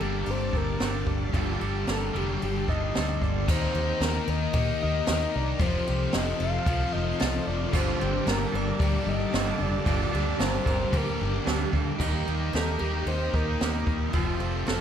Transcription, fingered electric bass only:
0.01 0.22 G1 medium
0.27 0.49 G1 medium
0.54 0.75 G1 medium
0.81 1.02 G1 medium
1.07 1.29 G1 medium
1.34 1.56 G1 medium
1.61 1.83 G1 medium
1.88 2.09 G1 medium
2.15 2.36 F1 medium
2.43 2.64 G1 medium
2.69 2.90 G1 medium
2.97 3.17 D2 medium
3.22 3.50 G1 medium
3.48 3.65 D#2 loud
3.74 3.91 D#2 medium
4.00 4.18 D#2 medium
4.28 4.45 D#2 medium
4.54 4.71 A#2 medium
4.84 5.00 D#2 medium
5.08 5.25 D#2 medium
5.36 5.52 C2 loud
5.60 5.77 F1 loud
5.89 6.06 C2 medium
6.14 6.31 F1 medium
6.40 6.57 F1 medium
6.66 6.84 C2 medium
6.95 7.12 F1 medium
7.21 7.38 C2 medium
7.47 7.64 F1 loud
7.74 7.91 G1 loud
8.01 8.18 G1 medium
8.27 8.44 G1 medium
8.53 8.71 G1 medium
8.80 8.97 D2 medium
9.06 9.24 G1 medium
9.34 9.51 G1 medium
9.60 9.77 F1 medium
9.86 10.04 G1 medium
10.14 10.31 D2 medium
10.40 10.58 G1 medium
10.66 10.84 G1 medium
10.92 11.10 D2 medium
11.21 11.38 G1 medium
11.47 11.64 D2 loud
11.73 11.91 D2 medium
12.01 12.22 D#2 medium
12.27 12.49 D#2 medium
12.54 12.76 D#2 medium
12.81 13.02 D#2 medium
13.06 13.28 D#2 medium
13.34 13.56 D#2 medium
13.61 13.83 D#2 medium
13.87 14.09 D#2 medium
14.14 14.36 F1 loud
14.40 14.62 F1 medium
14.68 14.81 F1 medium

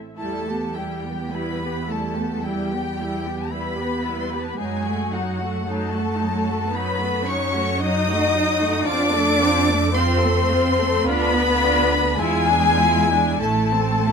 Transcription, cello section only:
0.16 0.71 A3 medium
0.74 1.32 G3 medium
1.31 1.88 B3 medium
1.86 2.43 A3 medium
2.42 3.50 G3 medium
3.50 4.59 B3 medium
4.58 5.12 G#3 medium
5.12 5.64 F#3 medium
5.65 6.71 A3 medium
6.70 7.25 B3 medium
7.25 7.79 C#4 medium
7.79 8.85 D#4 loud
8.85 9.94 D4 loud
9.94 11.02 C4 loud
11.04 12.17 B3 loud
12.17 13.40 G#3 loud
13.40 14.12 A3 medium

